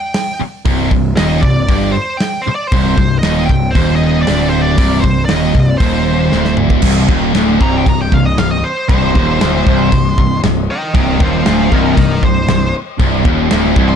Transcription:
Already playing: lead electric guitar G5
0.14 snare, open hi-hat
0.40 muted distorted electric guitar stroke, muted picked electric bass stroke
0.65 picked electric bass C1, distorted electric guitar C2, kick, open hi-hat
0.91 picked electric bass C1, distorted electric guitar C2, kick
1.17 picked electric bass D#1, distorted electric guitar D#2, lead electric guitar D#5, snare, open hi-hat
1.42 picked electric bass C1, distorted electric guitar C2, lead electric guitar D5, kick
1.69 picked electric bass G1, distorted electric guitar G2, kick, open hi-hat
1.92 lead electric guitar C5
2.17 lead electric guitar G5, snare, open hi-hat
2.42 lead electric guitar C5
2.47 muted picked electric bass stroke, muted distorted electric guitar stroke
2.55 lead electric guitar D5
2.67 lead electric guitar C5
2.72 picked electric bass C1, distorted electric guitar C2, kick, open hi-hat
2.97 picked electric bass C1, distorted electric guitar C2, kick
3.19 lead electric guitar D#5, open hi-hat
3.23 picked electric bass D#1, distorted electric guitar D#2, snare
3.46 picked electric bass C1, lead electric guitar G5, kick
3.50 distorted electric guitar C2
3.71 lead electric guitar C5
3.75 picked electric bass D#1, distorted electric guitar D#2, kick, open hi-hat
3.96 lead electric guitar D#5
4.22 lead electric guitar D5
4.27 picked electric bass D1, distorted electric guitar D2, snare, open hi-hat
4.50 lead electric guitar C5
4.61 lead electric guitar D5
4.78 picked electric bass C1, distorted electric guitar C2, kick, open hi-hat
5.01 picked electric bass C1, lead electric guitar C5, kick
5.05 distorted electric guitar C2
5.25 lead electric guitar D#5, snare, open hi-hat
5.30 picked electric bass D#1, distorted electric guitar D#2
5.55 picked electric bass C1, distorted electric guitar C2, kick
5.66 lead electric guitar D5
5.78 picked electric bass D#1, lead electric guitar C5, kick, open hi-hat
5.82 distorted electric guitar D#2
6.32 picked electric bass D1, distorted electric guitar D2, snare
6.45 snare
6.57 mid tom
6.70 kick
6.82 picked electric bass C1, distorted electric guitar C2, kick, crash
7.08 picked electric bass D#1, distorted electric guitar D#2, kick
7.33 picked electric bass D1, distorted electric guitar D2, snare, crash
7.61 picked electric bass C1, distorted electric guitar C2, lead electric guitar A#5, kick
7.78 lead electric guitar G5
7.86 picked electric bass C1, distorted electric guitar C2, lead electric guitar A#5, kick, crash
8.02 lead electric guitar G5
8.12 picked electric bass C1, distorted electric guitar C2, lead electric guitar F5, kick
8.26 lead electric guitar D#5
8.38 picked electric bass C1, distorted electric guitar C2, lead electric guitar F5, snare, crash
8.51 lead electric guitar D#5
8.64 lead electric guitar C5
8.89 picked electric bass C1, distorted electric guitar C2, lead electric guitar C5, kick, crash
9.15 picked electric bass D#1, distorted electric guitar D#2, kick
9.41 picked electric bass D1, distorted electric guitar D2, snare, crash
9.66 picked electric bass C1, distorted electric guitar C2, kick
9.92 picked electric bass C1, distorted electric guitar C2, kick, crash
10.18 picked electric bass C1, distorted electric guitar C2, kick
10.43 picked electric bass C1, distorted electric guitar C2, snare, crash
10.71 lead electric guitar D#5 G5
10.94 picked electric bass C1, distorted electric guitar C2, lead electric guitar D#5 G5, kick, crash
11.20 picked electric bass D#1, distorted electric guitar D#2, lead electric guitar C5 F5, kick
11.46 picked electric bass D1, distorted electric guitar D2, lead electric guitar C5 F5, snare, crash
11.72 picked electric bass C1, distorted electric guitar C2, lead electric guitar A#4 D#5, kick
11.97 picked electric bass C1, distorted electric guitar C2, lead electric guitar A#4 D#5, kick, crash
12.23 picked electric bass C1, distorted electric guitar C2, lead electric guitar C5, kick
12.48 picked electric bass C1, distorted electric guitar C2, snare, crash
12.99 picked electric bass C1, distorted electric guitar C2, kick, crash
13.25 picked electric bass D#1, distorted electric guitar D#2, kick
13.51 picked electric bass D1, distorted electric guitar D2, snare, crash
13.76 picked electric bass C1, distorted electric guitar C2, kick
13.89 lead electric guitar C6

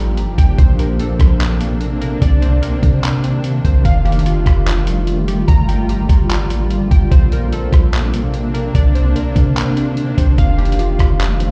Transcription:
Already playing: 808-style bass A1, ambient pad F3 A#3 D4 G4, synth keys G3 G4 G5 A#5
0.17 808-style bass G1, closed hi-hat
0.38 808-style bass G1, synth keys G5, kick, closed hi-hat
0.58 808-style bass A#1, ambient pad C3 C4, synth keys C5, kick, closed hi-hat
0.79 synth keys A#4, closed hi-hat
1.00 synth keys A4, closed hi-hat
1.19 808-style bass A#1, kick, cross-stick, closed hi-hat
1.40 clap, closed hi-hat
1.60 synth keys A#3, closed hi-hat
1.81 closed hi-hat
2.01 synth keys A#4, closed hi-hat
2.22 808-style bass C2, ambient pad D#3, synth keys D5, kick, closed hi-hat
2.42 synth keys C5, closed hi-hat
2.62 synth keys A#4, closed hi-hat
2.83 808-style bass C3, kick, closed hi-hat
3.03 clap, closed hi-hat
3.24 synth keys C4, closed hi-hat
3.44 closed hi-hat
3.65 808-style bass C2, synth keys C5, kick, closed hi-hat
3.85 808-style bass F1, ambient pad G3 A3 F4, synth keys F5, kick, closed hi-hat
4.05 synth keys G4, closed hi-hat
4.12 closed hi-hat
4.19 closed hi-hat
4.26 synth keys F4, closed hi-hat
4.46 808-style bass F1, kick, cross-stick, closed hi-hat
4.66 clap, closed hi-hat
4.87 synth keys F3, closed hi-hat
5.07 closed hi-hat
5.28 synth keys G4, closed hi-hat
5.48 808-style bass G1, ambient pad D3 A#3, synth keys A#5, kick, closed hi-hat
5.68 synth keys G5, closed hi-hat
5.89 synth keys G4, closed hi-hat
6.09 808-style bass G1, kick, closed hi-hat
6.30 clap, closed hi-hat
6.50 808-style bass A1, synth keys G3, closed hi-hat
6.71 808-style bass G1, closed hi-hat
6.91 808-style bass G1, synth keys G5, kick, closed hi-hat
7.11 808-style bass A#1, ambient pad C3 A#3 C4 D4, synth keys C5, kick, closed hi-hat
7.32 synth keys A#4, closed hi-hat
7.53 synth keys A4, closed hi-hat
7.73 808-style bass A#1, kick, cross-stick, closed hi-hat
7.93 clap, closed hi-hat
8.13 synth keys A#3, closed hi-hat
8.34 closed hi-hat
8.54 synth keys A#4, closed hi-hat
8.75 808-style bass C2, ambient pad C3 D#3, synth keys D5, kick, closed hi-hat
8.95 synth keys C5, closed hi-hat
9.15 synth keys A#4, closed hi-hat
9.36 808-style bass C3, kick, closed hi-hat
9.56 clap, closed hi-hat
9.77 synth keys C4, closed hi-hat
9.97 closed hi-hat
10.18 808-style bass C2, synth keys C5, kick, closed hi-hat
10.38 808-style bass F1, ambient pad D#3 G3 A3 F4, synth keys F5, kick, closed hi-hat
10.58 synth keys G4, closed hi-hat
10.65 closed hi-hat
10.72 closed hi-hat
10.79 synth keys F4, closed hi-hat
10.99 808-style bass F1, kick, cross-stick, closed hi-hat
11.20 clap, closed hi-hat
11.40 synth keys F3, closed hi-hat

